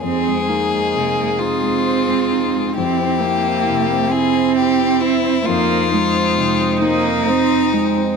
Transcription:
<<
  \new Staff \with { instrumentName = "Violin" } { \time 6/8 \key f \minor \tempo 4. = 44 aes'4. f'4. | g'4. aes'8 g'8 e'8 | f'4. ees'4. | }
  \new Staff \with { instrumentName = "Viola" } { \time 6/8 \key f \minor aes'2. | e'2. | ees'2. | }
  \new Staff \with { instrumentName = "Harmonium" } { \time 6/8 \key f \minor << { c''2.~ | c''2. | c''2. | } \\ { ees'2. | e'2. | ees'2. | } >> }
  \new Staff \with { instrumentName = "Harmonium" } { \time 6/8 \key f \minor aes2. | c'2.~ | c'2. | }
  \new Staff \with { instrumentName = "Grand piano" } { \time 6/8 \key f \minor f,16 aes16 ees'16 aes16 c16 aes16 ees'16 aes16 c''16 aes16 ees'16 aes16 | f,16 c'16 e'16 c'16 c16 c'16 e'16 c'16 c''16 c'16 e'16 c'16 | f,16 c'16 ees'16 c'16 c16 c'16 ees'16 c'16 c''8 ees'16 c'16 | }
  \new Staff \with { instrumentName = "Cello" } { \time 6/8 \key f \minor c'8 bes4 c'4. | c'8 bes4 c'4. | bes8 aes4 bes8 c'8 aes8 | }
>>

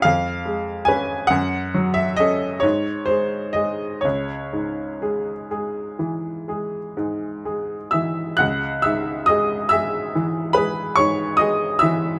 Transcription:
<<
  \new Staff \with { instrumentName = "Upright piano" } { \time 9/8 \key cis \minor \tempo 4. = 45 eis''4 gis''8 fis''8. e''16 dis''8 cis''8 bis'8 dis''8 | cis''2. r4 <e'' e'''>8 | <fis'' fis'''>8 <e'' e'''>8 <dis'' dis'''>8 <e'' e'''>4 <b' b''>8 <cis'' cis'''>8 <dis'' dis'''>8 <e'' e'''>8 | }
  \new Staff \with { instrumentName = "Upright piano" } { \clef bass \time 9/8 \key cis \minor eis,8 gis8 <cis' b'>8 fis,8 fis8 <cis' a'>8 gis,8 gis8 <gis gis'>8 | cis,8 gis,8 <gis gis'>8 <gis gis'>8 e8 <gis gis'>8 gis,8 <gis gis'>8 e8 | cis,8 gis,8 <gis gis'>8 <gis gis'>8 e8 <gis gis'>8 gis,8 <gis gis'>8 e8 | }
>>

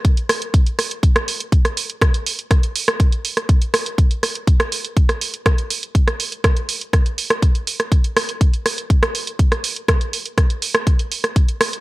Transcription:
\new DrumStaff \with { instrumentName = "Drums" } \drummode { \time 4/4 \tempo 4 = 122 <hh bd>16 hh16 <hho ss>16 hh16 <hh bd>16 hh16 <hho ss>16 hh16 <hh bd>16 <hh ss>16 hho16 hh16 <hh bd>16 <hh ss>16 hho16 hh16 | <hh bd ss>16 hh16 hho16 hh16 <hh bd ss>16 hh16 hho16 <hh ss>16 <hh bd>16 hh16 hho16 <hh ss>16 <hh bd>16 hh16 <hho ss>16 hh16 | <hh bd>16 hh16 <hho ss>16 hh16 <hh bd>16 <hh ss>16 hho16 hh16 <hh bd>16 <hh ss>16 hho16 hh16 <hh bd ss>16 hh16 hho16 hh16 | <hh bd>16 <hh ss>16 hho16 hh16 <hh bd ss>16 hh16 hho16 hh16 <hh bd ss>16 hh16 hho16 <hh ss>16 <hh bd>16 hh16 hho16 <hh ss>16 |
<hh bd>16 hh16 <hho ss>16 hh16 <hh bd>16 hh16 <hho ss>16 hh16 <hh bd>16 <hh ss>16 hho16 hh16 <hh bd>16 <hh ss>16 hho16 hh16 | <hh bd ss>16 hh16 hho16 hh16 <hh bd ss>16 hh16 hho16 <hh ss>16 <hh bd>16 hh16 hho16 <hh ss>16 <hh bd>16 hh16 <hho ss>16 hh16 | }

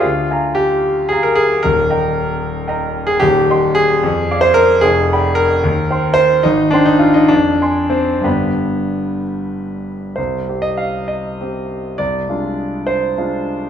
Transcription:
\new Staff \with { instrumentName = "Grand piano" } { \time 6/8 \key ees \major \tempo 4. = 72 << { d,8 <f'' aes'' bes''>4. <f'' aes'' bes''>4 | <ees,, ees,>8 <ees'' g'' bes''>4. <ees'' g'' bes''>4 | \key c \minor <ees,, ees,>8 <ees'' g'' c'''>4 f,8 <d'' f'' d'''>4 | <f,, f,>8 <d'' g'' b''>4 ees,8 <c'' g'' c'''>4 |
aes,,8 <c'' g'' c'''>4 f,8 <d'' aes'' c'''>4 | <g,, g, d'' g'' b''>2. | c,8 <c' g'>4. <c' g'>4 | c,8 <aes d' f'>4. <aes d' f'>4 | } \\ { f'4 g'4 aes'16 bes'16 aes'8 | bes'2~ bes'8. aes'16 | g'4 aes'4~ aes'16 c''16 bes'8 | aes'4 bes'4. c''8 |
ees'8 d'16 ees'16 f'16 ees'16 d'4 c'8 | b4. r4. | c''8. ees''16 f''8 ees''4. | d''4. c''4. | } >> }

